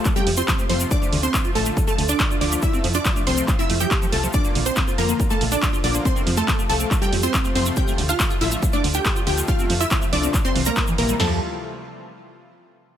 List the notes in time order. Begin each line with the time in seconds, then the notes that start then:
Already playing: A3 A4 A5
0.05 F3, kick, clap, closed hi-hat, shaker
0.16 G3 C4 G4 G5, closed hi-hat, shaker
0.27 F2 F3, open hi-hat
0.37 C4 F4 C5 C6, shaker
0.48 C3 F3 A3 F4, kick, clap, closed hi-hat, shaker
0.59 A3, closed hi-hat, shaker
0.69 F2 C3 F3 A3 C4 F4 C5 C6, open hi-hat
0.80 C3 F3 A3 C4 F4, closed hi-hat, shaker
0.91 D3 F3 A3 D4 F4 D5 D6, kick, closed hi-hat, shaker
1.02 A3, closed hi-hat, shaker
1.13 D2 D3, open hi-hat
1.23 C4 D4 C5 C6, closed hi-hat, shaker
1.34 D3 F3 A3 F4, kick, clap, closed hi-hat, shaker
1.44 F4, closed hi-hat, shaker
1.55 A1 D3 F3 A3 F4 A4 A5, open hi-hat
1.66 D3 F3 A3 F4, closed hi-hat, shaker
1.77 D3, kick, closed hi-hat, shaker
1.87 A3 A4 A5, closed hi-hat, shaker
1.98 D2 D3, open hi-hat
2.09 D4 D5 D6, closed hi-hat, shaker
2.20 D3 F3 A3 F4, kick, clap, closed hi-hat, shaker
2.30 F4, closed hi-hat, shaker
2.41 D2 D3 F3 A3 D4 F4 D5 D6, open hi-hat
2.52 D3 F3 A3 F4, closed hi-hat, shaker
2.62 C3 F3 A3 E4 F4 E5 E6, kick, closed hi-hat, shaker
2.73 C4, closed hi-hat, shaker
2.84 F2 F3, open hi-hat
2.94 D4 F4 D5 D6, closed hi-hat, shaker
3.05 C3 F3 A3 F4, kick, clap, closed hi-hat, shaker
3.16 A3, closed hi-hat, shaker
3.27 C2 C3 F3 A3 C4 F4 C5 C6, open hi-hat
3.38 C3 F3 A3 C4 F4, closed hi-hat, shaker
3.48 F3, kick, clap, closed hi-hat, shaker
3.59 C4 E4 E5 E6, closed hi-hat, shaker
3.70 F2 A3, open hi-hat
3.80 F3 G4 G5 G6, closed hi-hat, shaker
3.91 C3 F3 A3 C4 F4, kick, clap, closed hi-hat, shaker
4.02 F3, closed hi-hat, shaker
4.12 C2 C3 F3 A3 F4 A4 A5 A6, open hi-hat
4.23 C3 F3 A3 F4, closed hi-hat, shaker
4.33 D3 F3 A#3 D4 F4 D5 D6, kick, closed hi-hat, shaker
4.44 A#3, closed hi-hat, shaker
4.55 A#1 D3, open hi-hat
4.66 C4 D4 C5 C6, closed hi-hat, shaker
4.76 D3 F3 A#3 F4, kick, clap, closed hi-hat, shaker
4.88 F4, closed hi-hat, shaker
4.98 F2 D3 F3 A#3 F4 A#4 A#5, open hi-hat
5.09 D3 F3 A#3 F4, closed hi-hat, shaker
5.20 D3, kick, closed hi-hat, shaker
5.30 A3 A#3 A4 A5, closed hi-hat, shaker
5.41 A#1 D3, open hi-hat
5.52 D4 D5 D6, closed hi-hat, shaker
5.62 D3 F3 A#3 F4, kick, clap, closed hi-hat, shaker
5.73 F4, closed hi-hat, shaker
5.84 A#1 D3 F3 A#3 D4 F4 D5 D6, open hi-hat
5.94 D3 F3 A#3 F4, shaker
6.05 C3 F3 A3 C4 F4 C5 C6, kick, closed hi-hat, shaker
6.16 C4, closed hi-hat, shaker
6.27 F2 F3, open hi-hat
6.37 A3 F4 A4 A5, closed hi-hat, shaker
6.48 C3 F3 A3 F4, kick, clap, closed hi-hat, shaker
6.59 A3, closed hi-hat, shaker
6.69 C2 C3 F3 A3 F4 A4 A5, open hi-hat
6.80 C3 F3 A3 C4 F4, closed hi-hat, shaker
6.91 F3, kick, clap, closed hi-hat, shaker
7.02 G3 C4 G4 G5, closed hi-hat, shaker
7.12 F2 F3, open hi-hat
7.23 C4 F4 C5 C6, closed hi-hat, shaker
7.34 C3 F3 A3 F4, kick, clap, closed hi-hat, shaker
7.45 A3, closed hi-hat, shaker
7.55 F2 C3 F3 A3 C4 F4 C5 C6, open hi-hat
7.66 C3 F3 A3 C4 F4, closed hi-hat, shaker
7.76 D3 F3 A3 F4 G4 G5 G6, kick, closed hi-hat, shaker
7.88 A3, closed hi-hat, shaker
7.98 D2 D3, open hi-hat
8.09 D4 F4 F5 F6, closed hi-hat, shaker
8.19 D3 F3 A3 F4, kick, clap, closed hi-hat, shaker
8.30 F4, closed hi-hat, shaker
8.41 A1 D3 F3 A3 E4 F4 E5 E6, open hi-hat
8.52 D3 F3 A3 F4, closed hi-hat, shaker
8.62 D3, kick, closed hi-hat, shaker
8.73 A3 D4 D5 D6, closed hi-hat, shaker
8.84 D2 D3, open hi-hat
8.94 D4 G4 G5 G6, closed hi-hat, shaker
9.05 D3 F3 A3 F4, kick, clap, closed hi-hat, shaker
9.16 F4, closed hi-hat, shaker
9.27 D2 D3 F3 A3 F4 G4 G5 G6, open hi-hat
9.38 D3 F3 A3 F4, closed hi-hat, shaker
9.48 C3 F3 A3 F4 F5 F6, kick, closed hi-hat, shaker
9.59 C4, closed hi-hat, shaker
9.70 F2 F3, open hi-hat
9.80 E4 F4 E5 E6, closed hi-hat, shaker
9.91 C3 F3 A3 F4, kick, clap, closed hi-hat, shaker
10.02 A3, closed hi-hat, shaker
10.12 C2 C3 F3 A3 D4 F4 D5 D6, open hi-hat
10.23 C3 F3 A3 C4 F4, closed hi-hat, shaker
10.34 E3, kick, clap, closed hi-hat, shaker
10.45 C4 C5 C6, closed hi-hat, shaker
10.56 C2 E3, open hi-hat
10.65 G3 A#3 A#4 A#5, closed hi-hat, shaker
10.76 C3 E3 G3 E4, kick, clap, closed hi-hat, shaker
10.87 E3, closed hi-hat, shaker
10.98 A#1 C3 E3 G3 A#3 E4 A#4 A#5, open hi-hat
11.09 C3 E3 G3 E4, closed hi-hat, shaker
11.20 F2 C3 F3 A3 F4 A4 A5, snare, floor tom, crash